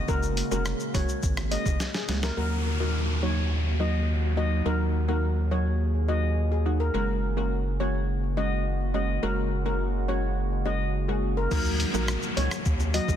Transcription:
Already playing: ambient pad C#3 G#3 A#3 F#4
0.08 analog synth bass F#1, synth pluck G#3 A#3 C#4 F#4, steel pan A#4, kick, shaker
0.23 shaker
0.37 closed hi-hat, shaker
0.51 analog synth bass F1, synth pluck G#3 A#3 C#4 F#4, steel pan A#4, high bongo, shaker
0.66 cross-stick, shaker
0.80 shaker
0.94 analog synth bass F#1, synth pluck G#3 A#3 C#4 F#4, steel pan C#5, kick, closed hi-hat, high bongo, low bongo, shaker
1.09 shaker
1.23 analog synth bass G#1, kick, shaker
1.37 cross-stick, high bongo, shaker
1.51 synth pluck G#3 A#3 C#4 F#4, steel pan D#5, closed hi-hat, shaker
1.66 analog synth bass F#1, kick, high bongo, shaker
1.80 snare, shaker
1.94 steel pan G#4, snare, shaker
2.08 analog synth bass C#2, synth pluck G#3 A#3 C#4 F#4, snare, closed hi-hat, low bongo, shaker
2.23 steel pan A#4, snare, shaker
2.37 analog synth bass D#2, ambient pad D#3 F#3 A#3 F#4, synth pluck F#3 A#3 D#4 F#4, steel pan A#4, downlifter
2.80 synth pluck F#3 A#3 D#4 F#4, steel pan A#4
3.22 synth pluck F#3 A#3 D#4 F#4, steel pan C#5
3.80 synth pluck F#3 A#3 D#4 F#4, steel pan D#5
4.37 synth pluck F#3 A#3 D#4 F#4, steel pan D#5
4.65 analog synth bass D#2, synth pluck F#3 A#3 D#4 F#4, ambient pad G#4, steel pan A#4
5.08 synth pluck F#3 A#3 D#4 F#4, steel pan A#4
5.51 synth pluck F#3 A#3 D#4 F#4, steel pan C#5
6.08 synth pluck F#3 A#3 D#4 F#4, steel pan D#5
6.52 steel pan G#4
6.65 synth pluck F#3 A#3 D#4 F#4
6.80 steel pan A#4
6.94 analog synth bass F#1, ambient pad C#3 G#3 F#4, synth pluck G#3 A#3 C#4 F#4, steel pan A#4
7.37 synth pluck G#3 A#3 C#4 F#4, steel pan A#4
7.80 synth pluck G#3 A#3 C#4 F#4, steel pan C#5
8.37 synth pluck G#3 A#3 C#4 F#4, steel pan D#5
8.94 synth pluck G#3 A#3 C#4 F#4, steel pan D#5
9.23 analog synth bass F#1, synth pluck G#3 A#3 C#4 F#4, steel pan A#4
9.65 synth pluck G#3 A#3 C#4 F#4, steel pan A#4
10.08 synth pluck G#3 A#3 C#4 F#4, steel pan C#5
10.66 synth pluck G#3 A#3 C#4 F#4, steel pan D#5
11.08 synth pluck G#3 A#3 C#4 F#4, steel pan G#4
11.37 steel pan A#4
11.51 analog synth bass D#2, ambient pad D#3 F#3 A#3 F#4, synth pluck F#3 A#3 D#4 F#4, steel pan A#4, kick, crash, downlifter, shaker
11.65 shaker
11.80 closed hi-hat, shaker
11.94 analog synth bass A#1, synth pluck F#3 A#3 D#4 F#4, steel pan A#4, high bongo, shaker
12.08 cross-stick, shaker
12.23 shaker
12.37 analog synth bass C#2, synth pluck F#3 A#3 D#4 F#4, steel pan C#5, closed hi-hat, high bongo, shaker
12.51 cross-stick, shaker
12.65 analog synth bass D#2, kick, shaker
12.80 high bongo, shaker
12.94 synth pluck F#3 A#3 D#4 F#4, steel pan D#5, closed hi-hat, shaker
13.08 analog synth bass C#2, kick, high bongo, shaker

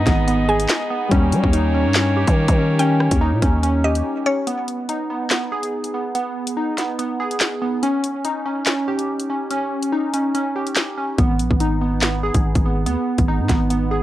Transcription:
Already playing: harp G#3 B3 D#4, french horn section B3 D#4 G#4 D#5, synth keys D#4, synth pluck D#5
0.07 808-style bass G#1, synth keys B3, kick, snare, closed hi-hat
0.27 synth keys B3, closed hi-hat
0.48 synth keys G#4, synth pluck G#5
0.60 closed hi-hat
0.69 snare, clap, closed hi-hat
0.90 synth keys B3
1.08 808-style bass D#2, harp G3 C#4, french horn section A#3 G4 C#5, synth keys C#4, kick, closed hi-hat
1.14 harp D#4
1.32 808-style bass G3, closed hi-hat
1.44 808-style bass D#2, kick
1.53 synth keys D#4, closed hi-hat
1.74 synth keys C#4
1.85 808-style bass G2
1.95 synth keys C#4, snare, clap, closed hi-hat
2.17 synth keys G4
2.27 808-style bass D#3, kick, closed hi-hat
2.48 808-style bass D#3, kick, closed hi-hat
2.58 synth keys C#4
2.79 synth keys C#4, synth pluck G5, closed hi-hat
3.00 cross-stick
3.11 808-style bass D#2, kick, closed hi-hat
3.21 synth keys D#4
3.32 808-style bass A#2
3.42 808-style bass D#2, synth keys C#4, kick, closed hi-hat
3.63 synth keys C#4, closed hi-hat
3.84 synth keys G4, synth pluck D#5
3.95 closed hi-hat
4.26 synth keys C#4, synth pluck C#5
4.47 synth keys B3, closed hi-hat
4.68 closed hi-hat
4.89 synth keys D#4, closed hi-hat
5.10 synth keys B3
5.30 synth keys B3, snare, clap, closed hi-hat
5.52 synth keys G#4
5.63 closed hi-hat
5.84 closed hi-hat
5.94 synth keys B3
6.15 synth keys B3, closed hi-hat
6.47 closed hi-hat
6.57 synth keys D#4
6.78 synth keys B3, snare, closed hi-hat
6.99 synth keys B3, closed hi-hat
7.20 synth keys G#4
7.31 closed hi-hat
7.40 snare, clap, closed hi-hat
7.62 synth keys B3
7.83 synth keys C#4, closed hi-hat
8.04 closed hi-hat
8.25 synth keys D#4, closed hi-hat
8.46 synth keys C#4
8.66 synth keys C#4, snare, clap, closed hi-hat
8.88 synth keys G4
8.99 closed hi-hat
9.20 closed hi-hat
9.30 synth keys C#4
9.51 synth keys C#4, closed hi-hat
9.83 closed hi-hat
9.92 synth keys D#4
10.14 synth keys C#4, closed hi-hat
10.35 synth keys C#4, closed hi-hat
10.56 synth keys G4
10.67 closed hi-hat
10.76 snare, clap, closed hi-hat
10.98 synth keys C#4
11.18 808-style bass G#1, synth keys B3, kick, closed hi-hat
11.39 808-style bass A#1, closed hi-hat
11.51 808-style bass G#1, kick
11.60 synth keys D#4, closed hi-hat
11.81 synth keys B3
12.02 synth keys B3, snare, clap, closed hi-hat
12.23 synth keys G#4
12.34 808-style bass G#1, kick, closed hi-hat
12.55 808-style bass G#1, kick, closed hi-hat
12.65 synth keys B3
12.86 808-style bass D#2, synth keys B3, closed hi-hat
13.18 808-style bass G#1, kick, closed hi-hat
13.28 synth keys D#4
13.39 808-style bass G#2
13.49 808-style bass G#1, synth keys B3, kick, snare, closed hi-hat
13.70 synth keys B3, closed hi-hat
13.91 synth keys G#4

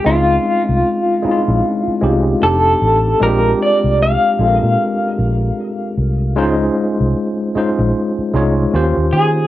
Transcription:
0.04 fingered electric bass C#2, tine electric piano G#3 C4 C#4 D#4 F4, clean electric guitar F4
0.69 fingered electric bass C2
1.23 tine electric piano G#3 C4 C#4 D#4 E4, muted fingered electric bass stroke
1.31 tine electric piano F4
1.48 fingered electric bass A#1
1.87 muted fingered electric bass stroke
2.01 fingered electric bass C2, tine electric piano G#3 C4 C#4 D#4 G4
2.41 fingered electric bass F1, tine electric piano A3 C4 D4 D#4 G4, clean electric guitar A4
2.82 fingered electric bass A1
3.20 fingered electric bass A#1, tine electric piano G#3 C4 D4 F4 G4, clean electric guitar A#4
3.62 clean electric guitar D5
3.84 fingered electric bass C2
4.03 clean electric guitar F5
4.39 fingered electric bass A#1, tine electric piano G#3 C4 D4 F4 A4
4.48 tine electric piano A#4
4.63 fingered electric bass A#2
5.19 fingered electric bass A#1
5.97 fingered electric bass C2
6.36 fingered electric bass C#2, tine electric piano G#3 C#4 D#4 F4 C5
6.94 clean electric guitar D#5
7.00 fingered electric bass C2
7.55 tine electric piano G#3 C#4 D#4 F4 C5, muted fingered electric bass stroke
7.79 fingered electric bass A#1
8.18 muted fingered electric bass stroke
8.34 fingered electric bass C2, tine electric piano G#3 C#4 D#4 F4 C#5
8.74 fingered electric bass D#2, tine electric piano A#3 C#4 F4 G4 C5
8.97 fingered electric bass D#2
9.13 fingered electric bass D#3, clean electric guitar G#4

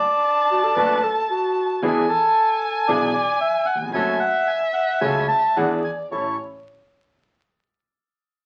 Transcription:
Already playing: bandoneon D5, violin A5
0.51 clarinet F#4
0.64 clarinet A4
0.76 upright bass F#1, grand piano F#2 F#3 A3 D4 A4, bandoneon D4 F#4 A4, clarinet B4
1.04 clarinet A4
1.30 clarinet F#4
1.82 upright bass E2, grand piano E2 E3 B3 D4 G#4, bandoneon D4 E4 G#4, violin G#5
2.08 bandoneon A4
2.88 grand piano B1 B2 E3 B3 D4 G#4, upright bass B1, bandoneon D4 E4 G#4 D5
3.14 bandoneon D5
3.41 bandoneon E5
3.66 bandoneon F#5
3.75 grand piano D#2
3.82 grand piano E2
3.89 grand piano F2
3.93 upright bass F#1, grand piano F#2 F#3 A3 C#4 A4, bandoneon C#4 F#4 A4 G#5, violin E5
4.20 bandoneon F#5
4.48 bandoneon G#5
4.74 bandoneon F#5
5.01 grand piano C#2 C#3 F#3 A3 C#4 A4, upright bass C#2, bandoneon C#4 F#4 A4 G#5
5.28 bandoneon A5
5.57 grand piano E2 E3 B3 D4 G#4, upright bass E2, bandoneon D4 E4 G#4 F#5, violin D5
5.84 bandoneon G#5
6.11 grand piano A1 C#4 E4 A4, upright bass A1, bandoneon C#4 E4 A4 C#6, clarinet E4, violin C#5

